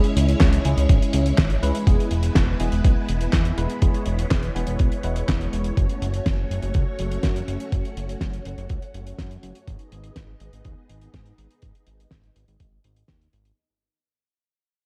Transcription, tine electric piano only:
0.00 0.62 G#3 medium
0.00 0.62 C#4 medium
0.00 0.62 E4 medium
0.00 0.62 G#4 medium
0.65 1.24 G#3 medium
0.65 1.24 C#4 medium
0.65 1.24 E4 medium
0.65 1.24 G#4 medium
1.63 1.84 G#3 medium
1.63 1.84 C#4 medium
1.63 1.84 E4 medium
1.63 1.84 B4 loud
1.87 2.57 G#3 medium
1.87 2.57 B3 medium
1.87 2.57 E4 medium
1.87 2.57 G#4 medium
2.60 3.19 G#3 medium
2.60 3.19 B3 medium
2.60 3.19 E4 medium
2.60 3.19 G#4 medium
3.58 3.79 G#3 medium
3.58 3.79 B3 medium
3.58 3.79 E4 medium
3.58 3.79 B4 loud
3.82 4.52 G#3 medium
3.82 4.52 B3 medium
3.82 4.52 E4 medium
3.82 4.52 G#4 medium
4.55 5.02 G#3 medium
4.55 5.02 B3 medium
4.55 5.02 E4 medium
4.55 5.02 G#4 medium
5.04 5.74 G#3 medium
5.04 5.74 B3 medium
5.04 5.74 E4 medium
5.04 5.74 B4 medium

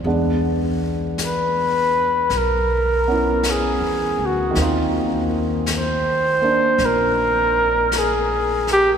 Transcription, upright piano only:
0.05 4.55 G#3 soft
0.05 3.06 B3 soft
0.05 4.56 D4 soft
3.08 4.55 B3 soft
3.08 4.56 C#4 soft
3.08 4.57 E4 soft
4.51 8.98 D#3 soft
4.51 6.40 A#3 soft
4.58 8.98 C4 soft
4.58 8.98 F4 medium
6.42 8.98 A#3 soft
6.42 8.98 D4 soft

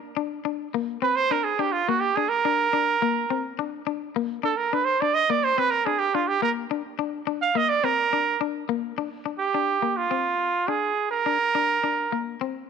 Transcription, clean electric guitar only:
0.17 0.39 D4 medium
0.45 0.68 D4 medium
0.74 0.97 A#3 medium
1.02 1.25 C4 medium
1.31 1.53 D4 medium
1.59 1.82 D4 medium
1.89 2.11 A#3 medium
2.17 2.27 D4 medium
2.45 2.67 D4 medium
2.73 2.96 D4 medium
3.02 3.24 A#3 medium
3.30 3.53 C4 medium
3.59 3.81 D4 medium
3.87 4.09 D4 medium
4.16 4.38 A#3 medium
4.43 4.54 D4 medium
4.73 4.95 D4 medium
5.02 5.24 D4 medium
5.30 5.52 A#3 medium
5.58 5.80 C4 medium
5.87 6.09 D4 medium
6.15 6.37 D4 medium
6.42 6.65 A#3 medium
6.71 6.81 D4 medium
6.99 7.22 D4 medium
7.27 7.50 D4 medium
7.55 7.78 A#3 medium
7.84 8.07 C4 medium
8.13 8.36 D4 medium
8.41 8.64 D4 medium
8.69 8.92 A#3 medium
8.98 9.09 D4 medium
9.26 9.49 D4 medium
9.54 9.78 D4 medium
9.82 10.06 A#3 medium
10.11 10.34 C4 medium
10.68 10.92 D4 medium
11.26 11.37 D4 medium
11.55 11.78 D4 medium
11.84 12.06 D4 medium
12.12 12.35 A#3 medium
12.41 12.64 C4 medium

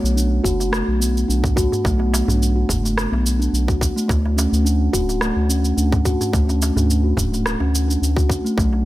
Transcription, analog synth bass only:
0.04 0.40 B1 loud
0.45 0.83 F#1 medium
0.88 1.25 B1 medium
1.29 1.67 B1 medium
1.85 2.23 B1 loud
2.28 2.65 B1 loud
2.69 3.07 F#1 medium
3.12 3.49 B1 medium
3.53 3.91 B1 medium
4.09 4.47 D2 loud
4.52 4.89 D2 loud
4.93 5.31 D1 medium
5.36 5.73 D2 medium
5.77 6.15 D2 medium
6.34 6.71 D2 loud
6.77 7.13 D2 loud
7.17 7.55 D1 medium
7.61 7.97 D2 medium
8.02 8.40 D2 medium
8.58 8.85 B1 loud

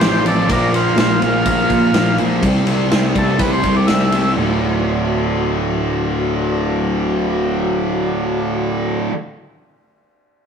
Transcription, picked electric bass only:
0.00 0.47 A1 medium
0.49 0.95 A#1 medium
0.97 1.20 A#1 medium
1.21 1.44 A#1 medium
1.46 1.69 A#1 medium
1.70 1.93 A#2 medium
1.95 2.18 A#1 loud
2.19 2.42 A#1 medium
2.42 2.89 C2 medium
2.92 3.15 C2 medium
3.15 3.38 C2 medium
3.39 3.63 C2 medium
3.64 3.87 C2 medium
3.90 4.35 C2 medium
4.37 9.07 D1 medium

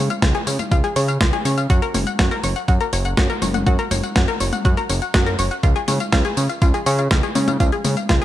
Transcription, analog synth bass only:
0.22 0.33 C#2 medium
0.47 0.58 C#3 medium
0.71 0.83 C#2 medium
0.96 1.18 C#3 loud
1.21 1.32 C#2 loud
1.45 1.67 C#3 medium
1.70 1.81 F#2 loud
1.94 2.05 F#1 medium
2.19 2.30 F#2 medium
2.44 2.55 F#1 medium
2.68 2.79 F#2 medium
2.93 3.15 F#1 loud
3.17 3.28 F#2 medium
3.42 3.64 F#1 medium
3.67 3.78 F#2 loud
3.91 4.02 F#1 medium
4.16 4.27 F#2 medium
4.40 4.51 F#1 medium
4.65 4.76 F#2 medium
4.90 5.01 F#1 loud
5.14 5.36 F#2 medium
5.39 5.50 F#1 medium
5.63 5.74 C#2 medium
5.88 5.99 C#3 medium
6.13 6.24 C#2 medium
6.37 6.48 C#3 medium
6.62 6.73 C#2 medium
6.86 7.08 C#3 loud
7.11 7.22 C#2 medium
7.36 7.58 C#3 medium
7.60 7.71 C#2 loud
7.85 7.96 C#3 medium
8.09 8.20 C#2 medium

